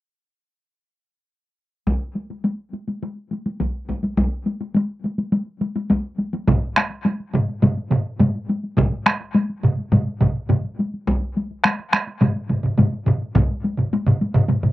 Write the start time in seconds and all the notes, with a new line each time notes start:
1.87 taiko, taiko high
2.15 taiko high
2.30 taiko high
2.44 taiko high
2.74 taiko high
2.88 taiko high
3.03 taiko high
3.31 taiko high
3.46 taiko high
3.60 taiko, taiko high
3.89 taiko, taiko high
4.03 taiko high
4.17 taiko, taiko high
4.46 taiko high
4.61 taiko high
4.75 taiko high
5.04 taiko high
5.18 taiko high
5.32 taiko high
5.61 taiko high
5.76 taiko high
5.90 taiko, taiko high
6.19 taiko high
6.33 taiko high
6.47 taiko, taiko low-mid, taiko mid, taiko high
6.62 taiko high
6.76 taiko rim, taiko high
6.90 taiko high
7.05 taiko high
7.20 taiko high
7.34 taiko low-mid, taiko mid, taiko high
7.49 taiko high
7.62 taiko low-mid, taiko mid, taiko high
7.77 taiko high
7.91 taiko low-mid, taiko mid, taiko high
8.19 taiko low-mid, taiko mid, taiko high
8.35 taiko high
8.49 taiko high
8.63 taiko high
8.77 taiko, taiko low-mid, taiko mid, taiko high
8.92 taiko high
9.06 taiko rim, taiko high
9.21 taiko high
9.35 taiko high
9.49 taiko high
9.63 taiko low-mid, taiko mid
9.78 taiko high
9.92 taiko low-mid, taiko mid, taiko high
10.07 taiko high
10.21 taiko, taiko low-mid, taiko mid, taiko high
10.49 taiko low-mid, taiko mid, taiko high
10.64 taiko high
10.79 taiko high
10.94 taiko high
11.07 taiko, taiko high
11.22 taiko high
11.37 taiko high
11.51 taiko high
11.64 taiko rim, taiko high
11.79 taiko high
11.93 taiko rim, taiko high
12.08 taiko high
12.21 taiko low-mid, taiko mid, taiko high
12.36 taiko high
12.49 taiko low-mid, taiko mid, taiko high
12.63 taiko low-mid, taiko mid
12.78 taiko low-mid, taiko mid, taiko high
12.93 taiko high
13.06 taiko low-mid, taiko mid
13.22 taiko high
13.35 taiko, taiko low-mid, taiko mid, taiko high
13.50 taiko high
13.64 taiko high
13.77 taiko low-mid, taiko mid, taiko high
13.93 taiko high
14.07 taiko low-mid, taiko mid, taiko high
14.21 taiko high
14.34 taiko low-mid, taiko mid, taiko high
14.49 taiko low-mid, taiko mid, taiko high
14.63 taiko low-mid, taiko mid, taiko high